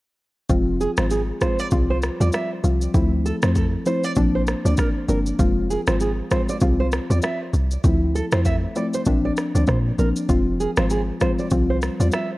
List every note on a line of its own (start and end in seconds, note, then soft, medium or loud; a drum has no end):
0.49 0.87 F1 loud
0.49 0.94 F3 medium
0.49 0.94 G#3 medium
0.49 0.94 C4 medium
0.49 0.94 F4 loud
0.49 kick loud
0.49 shaker medium
0.81 0.90 G#4 medium
0.81 shaker medium
0.97 1.32 G#1 medium
0.97 1.15 F3 medium
0.97 1.15 G#3 medium
0.97 1.15 C4 medium
0.97 1.15 F4 medium
0.97 1.05 C5 medium
0.97 cross-stick loud
0.97 shaker medium
1.11 1.20 G#4 medium
1.11 shaker medium
1.41 1.62 F3 medium
1.41 1.62 G#3 medium
1.41 1.62 C4 medium
1.41 1.62 F4 medium
1.41 1.60 C5 medium
1.41 kick medium
1.41 cross-stick medium
1.41 shaker medium
1.59 1.66 D5 medium
1.59 shaker medium
1.71 2.10 C2 loud
1.71 2.16 F3 medium
1.71 2.16 G3 medium
1.71 2.16 C4 medium
1.71 2.16 F4 loud
1.71 kick loud
1.71 shaker medium
1.90 1.97 C5 medium
2.02 cross-stick medium
2.02 shaker medium
2.20 2.30 E2 medium
2.20 2.61 F3 medium
2.20 2.61 G3 medium
2.20 2.61 C4 medium
2.20 2.61 F4 medium
2.20 2.27 D5 medium
2.20 shaker medium
2.32 2.49 E5 medium
2.32 cross-stick medium
2.32 shaker medium
2.64 2.88 C2 medium
2.64 2.92 F3 medium
2.64 2.92 G3 medium
2.64 2.92 C4 medium
2.64 2.93 F4 medium
2.64 shaker medium
2.81 shaker medium
2.94 3.32 D2 loud
2.94 3.38 F3 loud
2.94 3.38 A3 medium
2.94 3.39 C4 medium
2.94 3.39 E4 loud
2.94 kick loud
2.94 shaker medium
3.26 3.34 A4 medium
3.26 shaker medium
3.42 3.77 F2 medium
3.42 3.60 F3 medium
3.42 3.60 A3 medium
3.42 3.60 C4 medium
3.42 3.60 E4 medium
3.42 3.50 C5 medium
3.42 cross-stick loud
3.42 shaker medium
3.55 3.65 A4 medium
3.55 kick medium
3.55 shaker medium
3.86 4.07 F3 medium
3.86 4.07 A3 medium
3.86 4.07 C4 medium
3.86 4.07 E4 medium
3.86 4.05 C5 medium
3.86 shaker medium
4.04 4.11 D5 medium
4.04 shaker medium
4.16 4.55 A#1 loud
4.16 4.61 F3 loud
4.16 4.61 A#3 medium
4.16 4.61 C4 medium
4.16 4.61 D4 loud
4.16 kick loud
4.16 shaker medium
4.35 4.42 C5 medium
4.47 cross-stick medium
4.47 shaker medium
4.65 4.75 D2 medium
4.65 5.05 F3 medium
4.65 5.06 A#3 medium
4.65 5.06 C4 medium
4.65 5.06 D4 medium
4.65 4.72 D5 medium
4.65 shaker medium
4.77 4.88 A#4 medium
4.77 kick loud
4.77 cross-stick medium
4.77 shaker medium
5.08 5.33 G1 medium
5.08 5.37 F3 medium
5.08 5.37 A#3 medium
5.08 5.37 C4 medium
5.08 5.37 D4 medium
5.08 5.18 A#4 medium
5.08 shaker medium
5.26 shaker medium
5.39 5.77 F1 loud
5.39 5.83 F3 loud
5.39 5.83 G#3 medium
5.39 5.83 C4 medium
5.39 5.84 F4 loud
5.39 kick loud
5.39 shaker medium
5.70 5.79 G#4 medium
5.70 shaker medium
5.87 6.22 G#1 medium
5.87 6.05 F3 medium
5.87 6.05 G#3 medium
5.87 6.05 C4 medium
5.87 6.05 F4 medium
5.87 5.95 C5 medium
5.87 cross-stick loud
5.87 shaker medium
6.00 6.10 G#4 medium
6.00 shaker medium
6.31 6.52 F3 medium
6.31 6.52 G#3 medium
6.31 6.52 C4 medium
6.31 6.52 F4 medium
6.31 6.41 C5 medium
6.31 kick medium
6.31 cross-stick medium
6.31 shaker medium
6.49 6.56 D5 medium
6.49 shaker medium
6.61 7.00 C2 loud
6.61 7.06 F3 medium
6.61 7.06 G3 medium
6.61 7.06 C4 medium
6.61 7.06 F4 loud
6.61 kick loud
6.61 shaker medium
6.80 6.86 C5 medium
6.92 cross-stick loud
6.92 shaker medium
7.10 7.20 E2 medium
7.10 7.27 F3 medium
7.10 7.27 G3 medium
7.10 7.27 C4 medium
7.10 7.27 F4 medium
7.10 7.17 D5 medium
7.10 shaker medium
7.22 7.39 E5 medium
7.22 cross-stick loud
7.22 shaker medium
7.54 7.78 C2 medium
7.54 shaker medium
7.71 shaker medium
7.84 8.22 D2 loud
7.84 8.28 F3 medium
7.84 8.28 A3 medium
7.84 8.28 C4 medium
7.84 8.28 E4 loud
7.84 kick loud
7.84 shaker medium
8.15 8.24 A4 medium
8.15 shaker medium
8.32 8.67 F2 medium
8.32 8.49 F3 medium
8.32 8.50 A3 medium
8.32 8.50 C4 medium
8.32 8.50 E4 medium
8.32 8.40 C5 medium
8.32 cross-stick loud
8.32 shaker medium
8.45 8.55 E5 medium
8.45 kick medium
8.45 shaker medium
8.76 8.97 F3 medium
8.76 8.97 A3 medium
8.76 8.97 C4 medium
8.76 8.97 E4 medium
8.76 8.86 D5 medium
8.76 shaker medium
8.94 9.01 C5 medium
8.94 shaker medium
9.05 9.31 A#1 loud
9.05 9.51 F3 loud
9.05 9.51 A#3 medium
9.05 9.51 C4 medium
9.05 9.51 D4 loud
9.05 kick loud
9.05 shaker medium
9.25 9.31 D5 medium
9.37 cross-stick medium
9.37 shaker medium
9.55 9.65 D2 medium
9.55 9.95 F3 medium
9.55 9.95 A#3 medium
9.55 9.95 C4 medium
9.55 9.96 D4 medium
9.55 9.62 D5 medium
9.55 shaker medium
9.67 9.92 A#2 loud
9.67 9.77 C5 medium
9.67 kick medium
9.67 cross-stick medium
9.67 shaker medium
9.98 10.12 A#1 medium
9.98 10.27 F3 medium
9.98 10.27 A#3 medium
9.98 10.27 C4 medium
9.98 10.27 D4 medium
9.98 10.08 A#4 medium
9.98 shaker medium
10.16 shaker medium
10.29 10.67 F1 loud
10.29 10.73 F3 loud
10.29 10.73 G#3 medium
10.29 10.73 C4 medium
10.29 10.73 F4 loud
10.29 kick loud
10.29 shaker medium
10.60 10.69 G#4 medium
10.60 shaker medium
10.77 11.12 G#1 medium
10.77 10.94 F3 medium
10.77 10.94 G#3 medium
10.77 10.95 C4 medium
10.77 10.95 F4 medium
10.77 10.84 C5 medium
10.77 cross-stick loud
10.77 shaker medium
10.90 11.00 G#4 medium
10.90 shaker medium
11.21 11.42 F3 medium
11.21 11.42 G#3 medium
11.21 11.42 C4 medium
11.21 11.42 F4 medium
11.21 11.30 C5 medium
11.21 kick medium
11.21 cross-stick medium
11.21 shaker medium
11.39 11.46 D5 medium
11.39 shaker medium
11.50 11.90 C2 loud
11.50 11.96 F3 loud
11.50 11.96 G3 medium
11.50 11.96 C4 medium
11.50 11.96 F4 loud
11.50 kick loud
11.50 shaker medium
11.70 11.76 C5 medium
11.82 cross-stick medium
11.82 shaker medium
12.00 12.10 E2 medium
12.00 12.38 F3 medium
12.00 12.38 G3 medium
12.00 12.38 C4 medium
12.00 12.38 F4 medium
12.00 12.07 D5 medium
12.00 shaker medium
12.12 12.29 E5 medium
12.12 cross-stick loud
12.12 shaker medium